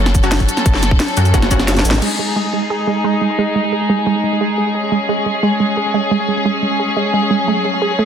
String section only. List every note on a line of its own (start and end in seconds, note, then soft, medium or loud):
0.00 1.98 F#3 medium
0.00 1.98 C#4 medium
0.00 1.99 A4 medium
2.02 7.44 G#3 medium
2.02 4.72 D#4 medium
2.02 8.05 G#4 medium
4.75 8.05 C#4 medium
7.48 8.05 F#3 medium